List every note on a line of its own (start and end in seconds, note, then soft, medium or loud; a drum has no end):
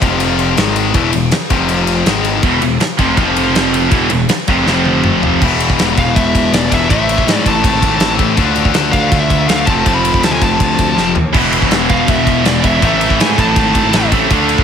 0.02 0.54 F1 loud
0.02 0.57 F2 loud
0.02 0.57 C3 loud
0.02 0.57 F3 loud
0.02 kick loud
0.02 ride medium
0.20 ride loud
0.39 ride medium
0.57 0.92 G#1 loud
0.57 0.94 G#2 loud
0.57 0.94 D#3 medium
0.57 0.95 G#3 loud
0.57 snare loud
0.57 ride loud
0.76 ride medium
0.94 1.12 E1 loud
0.94 1.13 E2 medium
0.94 1.13 B2 loud
0.94 1.13 E3 loud
0.94 kick loud
0.94 ride loud
1.13 1.31 E1 medium
1.13 1.28 E2 medium
1.13 1.28 B2 medium
1.13 ride medium
1.31 muted distorted electric guitar stroke medium
1.31 muted picked electric bass stroke soft
1.31 snare loud
1.31 ride loud
1.50 2.02 F1 loud
1.50 2.05 F2 loud
1.50 2.06 C3 loud
1.50 2.06 F3 loud
1.50 kick loud
1.50 ride medium
1.69 ride loud
1.87 ride medium
2.06 2.41 G#1 loud
2.06 2.42 G#2 loud
2.06 2.43 D#3 loud
2.06 2.44 G#3 loud
2.06 snare loud
2.06 ride loud
2.24 ride medium
2.43 2.60 E1 loud
2.43 2.61 E2 loud
2.43 2.61 B2 loud
2.43 2.62 E3 loud
2.43 kick loud
2.43 ride loud
2.61 2.79 E1 medium
2.61 2.77 E2 medium
2.61 2.77 B2 medium
2.61 ride medium
2.80 muted picked electric bass stroke soft
2.80 muted distorted electric guitar stroke medium
2.80 snare loud
2.80 ride medium
2.99 3.16 F1 loud
2.99 3.15 F2 medium
2.99 3.15 C3 medium
2.99 3.16 F3 loud
2.99 kick loud
2.99 ride medium
3.16 3.88 F1 loud
3.16 3.91 F2 medium
3.16 3.91 C3 loud
3.16 3.91 F3 loud
3.16 kick loud
3.16 ride loud
3.36 ride medium
3.55 snare loud
3.55 ride loud
3.74 ride medium
3.91 4.09 E1 loud
3.91 4.09 E2 loud
3.91 4.10 B2 loud
3.91 4.10 E3 loud
3.91 kick loud
3.91 ride loud
4.10 4.28 E1 medium
4.10 4.25 E2 medium
4.10 4.26 B2 medium
4.10 ride medium
4.29 muted distorted electric guitar stroke medium
4.29 muted picked electric bass stroke soft
4.29 snare loud
4.29 ride loud
4.48 4.65 F1 medium
4.48 4.65 F2 medium
4.48 4.66 C3 loud
4.48 4.67 F3 medium
4.48 kick loud
4.48 ride medium
4.67 5.37 F1 loud
4.67 5.40 F2 medium
4.67 5.40 C3 medium
4.67 5.41 F3 loud
4.67 snare medium
4.85 high tom medium
5.04 mid tom medium
5.23 floor tom medium
5.41 5.74 E1 loud
5.41 6.88 E2 medium
5.41 6.88 B2 loud
5.41 6.69 E3 loud
5.41 6.70 G#3 loud
5.41 6.70 B3 loud
5.41 6.69 E4 loud
5.41 kick loud
5.41 crash loud
5.60 ride medium
5.70 kick medium
5.79 5.95 E1 medium
5.79 snare loud
5.79 ride loud
5.97 6.14 E1 loud
5.97 6.15 F5 medium
5.97 kick medium
5.97 ride medium
6.16 6.48 E1 loud
6.16 6.53 E5 medium
6.16 kick loud
6.16 ride loud
6.35 kick medium
6.35 ride medium
6.52 6.69 E1 loud
6.52 6.70 D5 medium
6.52 snare loud
6.52 ride loud
6.70 6.88 E1 medium
6.70 6.89 E3 medium
6.70 6.89 G#3 medium
6.70 6.88 B3 loud
6.70 6.88 E4 medium
6.70 6.89 E5 medium
6.70 kick medium
6.70 ride medium
6.88 7.23 A1 loud
6.88 8.17 A2 loud
6.88 8.18 E3 loud
6.88 8.20 A3 loud
6.88 8.19 C4 loud
6.88 8.18 E4 loud
6.88 7.34 E5 loud
6.88 kick loud
6.88 ride loud
7.09 ride medium
7.18 kick medium
7.27 7.43 G#2 medium
7.27 snare loud
7.27 ride loud
7.34 7.47 D5 loud
7.45 7.61 A1 loud
7.45 8.16 A5 loud
7.45 kick medium
7.45 ride medium
7.64 7.80 G#1 medium
7.64 kick loud
7.64 ride loud
7.82 7.99 G#1 medium
7.82 kick medium
7.82 ride medium
8.00 8.17 A1 medium
8.00 snare loud
8.00 ride loud
8.19 8.35 A1 medium
8.19 8.38 A2 medium
8.19 8.37 E3 medium
8.19 8.39 A3 medium
8.19 8.37 C4 loud
8.19 8.36 E4 loud
8.19 kick loud
8.19 ride medium
8.37 8.70 D2 loud
8.37 9.65 D3 loud
8.37 9.66 A3 loud
8.37 9.67 D4 loud
8.37 kick loud
8.37 ride loud
8.41 9.68 F4 loud
8.56 ride medium
8.65 kick medium
8.74 8.91 D2 medium
8.74 snare loud
8.74 ride loud
8.92 9.09 D2 medium
8.92 9.19 F5 loud
8.92 kick medium
8.92 ride medium
9.12 9.45 D2 loud
9.12 kick loud
9.12 ride loud
9.20 9.46 E5 medium
9.30 kick medium
9.30 ride medium
9.48 9.65 D2 loud
9.48 9.66 F5 medium
9.48 snare loud
9.48 ride loud
9.66 9.84 F1 medium
9.66 11.14 F2 medium
9.66 11.15 C3 loud
9.66 10.94 F3 loud
9.66 10.95 A3 loud
9.66 10.96 C4 loud
9.66 10.97 F4 loud
9.66 9.95 A5 loud
9.66 kick loud
9.66 ride medium
9.86 10.19 F1 loud
9.86 kick loud
9.86 ride loud
9.94 10.20 B5 loud
10.05 ride medium
10.14 kick medium
10.23 10.39 D2 medium
10.23 10.32 A5 loud
10.23 snare loud
10.23 ride loud
10.32 10.41 G#5 medium
10.42 10.58 F1 medium
10.42 11.12 A5 medium
10.42 kick medium
10.42 ride medium
10.60 10.77 D2 loud
10.60 kick loud
10.60 ride loud
10.78 10.95 D2 medium
10.78 kick medium
10.78 ride medium
10.95 11.13 F1 medium
10.95 11.13 F3 medium
10.95 11.14 A3 medium
10.95 11.14 C4 medium
10.95 11.15 F4 medium
10.95 snare medium
11.15 11.32 D#2 medium
11.15 floor tom loud
11.32 11.67 E1 loud
11.32 12.80 E2 medium
11.32 12.80 B2 medium
11.32 12.61 E3 medium
11.32 12.62 G#3 loud
11.32 12.62 B3 loud
11.32 12.60 E4 loud
11.32 kick loud
11.32 crash loud
11.53 ride medium
11.62 kick medium
11.70 11.87 E1 medium
11.70 snare loud
11.70 ride loud
11.89 12.06 E1 medium
11.89 12.09 F5 medium
11.89 kick medium
11.89 ride medium
12.08 12.41 E1 loud
12.08 12.45 E5 loud
12.08 kick loud
12.08 ride loud
12.27 kick medium
12.27 ride medium
12.44 12.61 E1 loud
12.44 12.64 D5 medium
12.44 snare loud
12.44 ride loud
12.62 12.80 E1 medium
12.62 12.81 E2 medium
12.62 12.81 B2 medium
12.62 12.80 E3 medium
12.62 12.81 G#3 medium
12.62 12.81 B3 medium
12.62 12.80 E4 loud
12.62 12.81 E5 loud
12.62 kick loud
12.62 ride medium
12.80 13.15 A1 loud
12.80 14.10 A2 loud
12.80 14.10 E3 loud
12.80 14.13 A3 loud
12.80 14.11 C4 loud
12.80 14.10 E4 loud
12.80 kick loud
12.80 ride loud
12.85 13.18 E5 loud
13.01 ride medium
13.10 kick medium
13.19 13.35 G#2 medium
13.19 13.39 G#5 loud
13.19 snare loud
13.19 ride loud
13.38 13.54 A1 loud
13.38 14.09 A5 loud
13.38 kick medium
13.38 ride medium
13.56 13.73 G#1 loud
13.56 kick loud
13.56 ride loud
13.75 13.91 G#1 medium
13.75 kick medium
13.75 ride medium
13.93 14.10 A1 loud
13.93 snare loud
13.93 ride loud
14.11 14.28 A1 medium
14.11 14.31 A2 medium
14.11 14.29 E3 medium
14.11 14.31 A3 medium
14.11 14.29 C4 medium
14.11 14.29 E4 medium
14.11 kick loud
14.11 ride medium
14.30 14.63 D2 loud
14.30 14.64 D3 loud
14.30 14.64 A3 loud
14.30 14.64 D4 loud
14.30 14.64 F4 loud
14.30 kick loud
14.30 ride loud
14.49 ride medium
14.58 kick medium